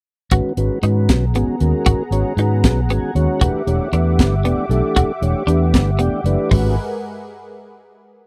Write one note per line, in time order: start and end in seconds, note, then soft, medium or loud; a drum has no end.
0.31 0.42 G#1 medium
0.31 0.53 D#3 medium
0.31 0.53 G#3 medium
0.31 3.39 B3 medium
0.31 0.53 C#4 medium
0.31 0.53 F#4 medium
0.31 0.48 F#4 medium
0.31 3.39 G#4 medium
0.31 0.53 B4 medium
0.31 6.47 F#5 medium
0.31 3.38 A#5 medium
0.31 kick loud
0.31 closed hi-hat medium
0.45 muted fingered electric bass stroke soft
0.57 0.68 G#1 medium
0.57 0.78 D#3 medium
0.57 0.79 G#3 medium
0.57 0.79 C#4 medium
0.57 0.79 F#4 medium
0.57 0.79 B4 medium
0.57 closed hi-hat medium
0.82 1.10 G#2 medium
0.82 1.25 D#3 medium
0.82 1.25 G#3 medium
0.82 1.25 C#4 medium
0.82 1.00 D#4 medium
0.82 1.25 F#4 medium
0.82 1.25 B4 medium
0.82 closed hi-hat medium
1.09 1.35 B1 medium
1.09 kick medium
1.09 snare loud
1.09 closed hi-hat medium
1.34 1.45 G#1 medium
1.34 1.56 D#3 medium
1.34 1.56 G#3 medium
1.34 1.52 B3 medium
1.34 1.56 C#4 medium
1.34 1.56 F#4 medium
1.34 1.56 G#4 medium
1.34 closed hi-hat medium
1.48 muted fingered electric bass stroke soft
1.60 1.72 D#2 medium
1.60 2.02 D#3 medium
1.60 2.03 G#3 medium
1.60 2.03 C#4 medium
1.60 2.03 F#4 medium
1.60 2.03 A#4 medium
1.60 closed hi-hat medium
1.86 1.97 G#1 medium
1.86 2.03 F#4 medium
1.86 kick loud
1.86 closed hi-hat medium
1.99 muted fingered electric bass stroke soft
2.11 2.22 G#1 medium
2.11 2.33 D#3 medium
2.11 2.33 G#3 medium
2.11 2.33 C#4 medium
2.11 2.34 F#4 medium
2.11 2.34 C#5 medium
2.11 closed hi-hat medium
2.37 2.65 G#2 medium
2.37 2.80 D#3 medium
2.37 2.80 G#3 medium
2.37 2.81 C#4 medium
2.37 2.55 D#4 medium
2.37 2.81 F#4 medium
2.37 2.81 B4 medium
2.37 closed hi-hat medium
2.64 2.89 B1 medium
2.64 kick medium
2.64 snare loud
2.64 closed hi-hat medium
2.89 3.00 G#1 medium
2.89 3.11 D#3 medium
2.89 3.11 G#3 medium
2.89 3.07 B3 medium
2.89 3.11 C#4 medium
2.89 3.11 F#4 medium
2.89 3.11 G#4 medium
2.89 3.14 G#5 medium
2.89 closed hi-hat medium
3.03 muted fingered electric bass stroke soft
3.15 3.26 D#2 medium
3.15 3.41 D#3 medium
3.15 3.41 G#3 medium
3.15 3.41 C#4 medium
3.15 3.42 F#4 medium
3.15 3.42 C#5 medium
3.15 closed hi-hat soft
3.40 3.52 E1 medium
3.40 3.62 E3 medium
3.40 3.62 A3 medium
3.40 3.62 D4 medium
3.40 3.58 F#4 medium
3.40 3.62 G4 medium
3.40 6.48 G4 medium
3.40 3.63 B4 medium
3.40 6.48 E5 medium
3.40 6.48 D6 medium
3.40 kick loud
3.40 closed hi-hat medium
3.54 muted fingered electric bass stroke soft
3.66 3.78 E1 medium
3.66 3.88 E3 medium
3.66 3.88 A3 medium
3.66 3.88 D4 medium
3.66 3.88 G4 medium
3.66 3.88 C#5 medium
3.66 closed hi-hat medium
3.92 4.21 E2 medium
3.92 4.35 E3 medium
3.92 4.35 A3 medium
3.92 4.35 D4 medium
3.92 4.10 D4 medium
3.92 4.35 G4 medium
3.92 4.35 B4 medium
3.92 closed hi-hat medium
4.19 4.44 G1 medium
4.19 kick medium
4.19 snare loud
4.19 closed hi-hat medium
4.43 4.55 E1 medium
4.43 4.65 E3 medium
4.43 4.65 A3 medium
4.43 4.61 B3 medium
4.43 4.65 D4 medium
4.43 4.66 G4 medium
4.43 4.66 D5 medium
4.43 closed hi-hat medium
4.57 muted fingered electric bass stroke soft
4.69 4.80 B1 medium
4.69 5.12 E3 medium
4.69 5.12 A3 medium
4.69 5.12 D4 medium
4.69 5.12 G4 medium
4.69 5.13 A4 medium
4.69 closed hi-hat medium
4.96 5.07 E1 medium
4.96 5.13 F#4 medium
4.96 kick loud
4.96 closed hi-hat medium
5.08 muted fingered electric bass stroke soft
5.21 5.33 E1 medium
5.21 5.43 E3 medium
5.21 5.43 A3 medium
5.21 5.43 D4 medium
5.21 5.43 G4 medium
5.21 5.43 C#5 medium
5.21 closed hi-hat medium
5.47 5.75 E2 medium
5.47 5.90 E3 medium
5.47 5.90 A3 medium
5.47 5.64 D4 medium
5.47 5.90 D4 medium
5.47 5.91 G4 medium
5.47 5.91 B4 medium
5.47 closed hi-hat medium
5.74 5.99 G1 medium
5.74 kick medium
5.74 snare loud
5.74 closed hi-hat medium
5.99 6.10 E1 medium
5.99 6.21 E3 medium
5.99 6.21 A3 medium
5.99 6.15 B3 medium
5.99 6.21 D4 medium
5.99 6.21 G4 medium
5.99 6.21 D5 medium
5.99 6.24 G5 medium
5.99 closed hi-hat medium
6.13 muted fingered electric bass stroke soft
6.24 6.35 F#1 medium
6.24 6.51 E3 medium
6.24 6.51 A3 medium
6.24 6.51 D4 medium
6.24 6.52 G4 medium
6.24 6.50 B4 medium
6.24 6.49 D5 medium
6.24 closed hi-hat medium
6.51 6.75 G#1 medium
6.51 6.75 D#3 medium
6.51 6.67 G#3 medium
6.51 6.75 G#3 medium
6.51 6.76 G#3 medium
6.51 6.75 C#4 medium
6.51 6.75 F#4 medium
6.51 6.76 G#4 medium
6.51 6.75 A#4 medium
6.51 6.75 B4 medium
6.51 6.75 F#5 medium
6.51 kick medium
6.51 floor tom medium
6.51 open hi-hat medium